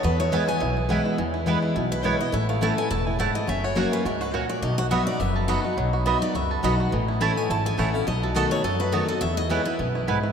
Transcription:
0.03 steel-string acoustic guitar E2 B4, upright bass E2, five-string banjo B3
0.20 five-string banjo E4, steel-string acoustic guitar C#5
0.32 steel-string acoustic guitar E3 G#3 B3 E4 E5, mandolin B3 E4 B4 G#5, five-string banjo E4
0.48 five-string banjo B3, steel-string acoustic guitar B3 E4 G#5
0.60 upright bass B1, steel-string acoustic guitar B2, five-string banjo E4
0.77 five-string banjo E4
0.89 steel-string acoustic guitar E3 G#3 B3 E4, five-string banjo B3, mandolin B3 E4 B4 G#5
1.05 five-string banjo E4
1.18 steel-string acoustic guitar E2, upright bass E2, five-string banjo E3
1.34 five-string banjo E4
1.46 steel-string acoustic guitar E3 G#3 B3 E4, five-string banjo B3, mandolin B3 E4 B4 G#5
1.62 five-string banjo E4
1.76 upright bass B1, steel-string acoustic guitar B2, five-string banjo E4
1.92 five-string banjo E4, steel-string acoustic guitar B4
2.03 steel-string acoustic guitar E3 G#3 B3 E4 C#5, mandolin B3 E4 B4 G#5, five-string banjo E4
2.19 steel-string acoustic guitar B3 E4 D#5, five-string banjo E4
2.32 upright bass A1, steel-string acoustic guitar A2 E5, five-string banjo E4
2.49 five-string banjo A3, steel-string acoustic guitar F5
2.61 steel-string acoustic guitar E3 A3 C#4 E4 F#5, mandolin A3 E4 C#5 A5, five-string banjo A4
2.77 steel-string acoustic guitar C#4 E4 G#5, five-string banjo E4
2.91 upright bass E1, steel-string acoustic guitar A2 A5, five-string banjo A4
3.06 five-string banjo E4, steel-string acoustic guitar G#5
3.19 steel-string acoustic guitar G#2 F#5, mandolin A3 E4 C#5 A5, five-string banjo A4
3.35 five-string banjo E4, steel-string acoustic guitar D#5
3.47 upright bass F#1, steel-string acoustic guitar F#2 E5, five-string banjo C#4
3.64 five-string banjo F#4, steel-string acoustic guitar C#5
3.75 steel-string acoustic guitar F#3 A#3 C#4 F#4 A#4, mandolin A#3 F#4 C#5 F#5, five-string banjo F#4
3.92 five-string banjo C#4, steel-string acoustic guitar B4
4.05 upright bass C#2, steel-string acoustic guitar G#2 A#4, five-string banjo F#4
4.21 five-string banjo F#4, steel-string acoustic guitar B4
4.34 steel-string acoustic guitar A#2 C#5, mandolin A#3 F#4 C#5 F#5, five-string banjo C#4
4.49 five-string banjo F#4, steel-string acoustic guitar D5
4.62 upright bass B1, steel-string acoustic guitar B2 D#5, five-string banjo D#4
4.78 five-string banjo F#4, steel-string acoustic guitar F#5
4.91 steel-string acoustic guitar F#3 B3 D#4 F#4 E5, mandolin B3 F#4 D#5 B5, five-string banjo B3
5.07 five-string banjo D#4, steel-string acoustic guitar D#4 F#4 D5
5.20 upright bass F#1, steel-string acoustic guitar F#2 E5, five-string banjo B3
5.36 five-string banjo A4
5.48 steel-string acoustic guitar F#3 B3 D#4 F#4 F#5, mandolin B3 F#4 D#5 B5, five-string banjo F#4
5.64 five-string banjo D#4, steel-string acoustic guitar D#4 F#4
5.77 upright bass B1, steel-string acoustic guitar B2, five-string banjo F#3
5.93 five-string banjo F#4
6.06 steel-string acoustic guitar F#3 B3 D#4 F#4 E5, mandolin B3 F#4 D#5 B5, five-string banjo B3
6.22 five-string banjo D#4, steel-string acoustic guitar D5
6.35 upright bass C#2, steel-string acoustic guitar F#2 E5, five-string banjo F#4
6.51 five-string banjo A4
6.63 upright bass B1, steel-string acoustic guitar F#3 B3 D#4 F#4 F#5, mandolin B3 F#4 D#5 B5, five-string banjo D#4
6.80 five-string banjo F#4
6.92 upright bass A1, steel-string acoustic guitar A2, five-string banjo E3
7.08 five-string banjo E4
7.21 steel-string acoustic guitar E3 A3 C#4 E4 B5, mandolin A3 E4 C#5 A5, five-string banjo A3
7.36 five-string banjo C#4, steel-string acoustic guitar C#4 E4 G#5
7.49 upright bass G#1, steel-string acoustic guitar E2 A5, five-string banjo E4
7.66 five-string banjo A4, steel-string acoustic guitar G#5
7.77 upright bass A1, steel-string acoustic guitar E3 A3 C#4 E4 F#5, mandolin A3 E4 C#5 A5, five-string banjo C#4
7.94 steel-string acoustic guitar C#4 E4 F5, five-string banjo E4
8.07 upright bass B1, steel-string acoustic guitar B2 D#5, five-string banjo D#4
8.23 steel-string acoustic guitar F#4, five-string banjo A4
8.35 steel-string acoustic guitar D#3 A3 B3 F#4 A4, mandolin B3 F#4 D#5 A5, five-string banjo F#4
8.51 five-string banjo D#4, steel-string acoustic guitar C#5
8.64 upright bass F#2, steel-string acoustic guitar F#2 D#5, five-string banjo A4
8.80 five-string banjo F#4, steel-string acoustic guitar B4
8.92 steel-string acoustic guitar D#3 A3 B3 F#4 C#5, mandolin B3 F#4 D#5 A5, five-string banjo D#4
9.08 steel-string acoustic guitar B3 F#4 D#5, five-string banjo A4
9.21 steel-string acoustic guitar E2 E5, upright bass E2, five-string banjo E4
9.37 five-string banjo E4, steel-string acoustic guitar D#5
9.49 steel-string acoustic guitar E3 G#3 B3 E4 C#5, mandolin B3 E4 B4 G#5, five-string banjo B3
9.65 steel-string acoustic guitar B3 E4 B4, five-string banjo E4
9.79 upright bass B1, steel-string acoustic guitar F#2, five-string banjo B3
9.95 five-string banjo E4
10.07 steel-string acoustic guitar G#2, mandolin B3 E4 B4 G#5, five-string banjo E4
10.23 five-string banjo E4

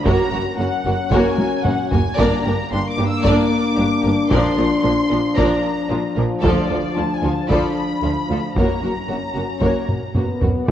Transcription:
0.05 double bass section F#1, cello section F#2, french horn section F#3 C#4, viola section A#3 F#4, violin section A#4 C#5 A#5, taiko
0.32 double bass section F#1, cello section F#2, viola section A#3 F#4, violin section F#4 A#4
0.58 double bass section F#1, cello section F#2, viola section A#3 F#4, violin section C#4 F#4 F#5
0.85 double bass section F#1, cello section F#2, viola section A#3 F#4, violin section F#4 A#4
1.11 double bass section F#1, cello section F#2, viola section A#3 F#4, violin section A#4 C#5 G#5, taiko
1.38 taiko high
1.65 double bass section F#1, cello section F#2, viola section A#3 F#4, violin section C#4 F#4 F#5, taiko low-mid
1.91 double bass section F#1, cello section F#2, viola section A#3 F#4, violin section F#4 A#4 G#5, taiko low
2.17 double bass section G1, cello section G2, french horn section A#3 D4, viola section A#3 D4, violin section A#4 D5 A#5, taiko
2.45 double bass section G1, cello section G2, viola section A#3 D4, violin section G4 A#4
2.71 double bass section G1, cello section G2, viola section A#3 D4, violin section D4 G4 C6
2.90 violin section D6
2.97 double bass section G1, cello section G2, viola section A#3 D4, violin section G4 A#4
3.08 violin section E6
3.22 double bass section G1, cello section G2, violin section A#4 D5, taiko
3.26 viola section A#3 D4, violin section D6
3.76 double bass section G1, cello section G2, viola section A#3 D4, violin section D4 G4
4.02 double bass section G1, cello section G2, viola section A#3 D4, violin section G4 A#4
4.30 double bass section A#1, cello section A#2, french horn section F3, viola section F3 D4, violin section A#4 D5 C6, taiko
4.57 double bass section A#1, cello section A#2, viola section F3 D4, violin section F4 A#4
4.83 double bass section A#1, cello section A#2, viola section F3 D4, violin section D4 F4
5.09 double bass section A#1, cello section A#2, viola section F3 D4, violin section F4 A#4
5.36 double bass section A#1, cello section A#2, viola section F3 D4, violin section A#4 D5 A#5, taiko
5.88 double bass section A#1, cello section A#2, viola section F3 D4, violin section D4 F4
6.16 double bass section A#1, cello section A#2, viola section F3 D4, violin section F4 A#4
6.42 cello section D2, double bass section D2, viola section F3 F4, french horn section D4, violin section A4 D5, taiko
6.68 double bass section D2, cello section D2, viola section F3 F4, violin section F4 A4
6.95 cello section D2, double bass section D2, viola section F3 F4, violin section D4 F4 A5
7.15 violin section G#5
7.22 cello section D2, double bass section D2, viola section F3 F4, violin section F4 A4
7.32 violin section A5
7.49 cello section D2, double bass section D2, viola section F3 F4, violin section A4 D5 B5, taiko
8.03 cello section D2, double bass section D2, viola section F3 F4, violin section D4 F4
8.30 cello section D2, double bass section D2, viola section F3 F4, violin section F4 A4
8.56 double bass section F#1, cello section F#2, french horn section F#3 C#4, viola section A#3 F#4, violin section A#4 C#5 A#5, taiko
8.82 double bass section F#1, cello section F#2, viola section A#3 F#4, violin section F#4 A#4
9.08 double bass section F#1, cello section F#2, viola section A#3 F#4, violin section C#4 F#4
9.35 double bass section F#1, cello section F#2, viola section A#3 F#4, violin section F#4 A#4
9.60 double bass section F#1, cello section F#2, viola section A#3 F#4, violin section A#4 C#5, taiko
9.89 taiko low-mid
10.15 double bass section F#1, cello section F#2, viola section A#3 F#4, french horn section B3, violin section C#4 F#4, taiko low-mid
10.41 double bass section F#1, cello section F#2, viola section A#3 F#4, violin section F#4 A#4, taiko low
10.68 double bass section B1, violin section D5 F#5, viola section D5, taiko

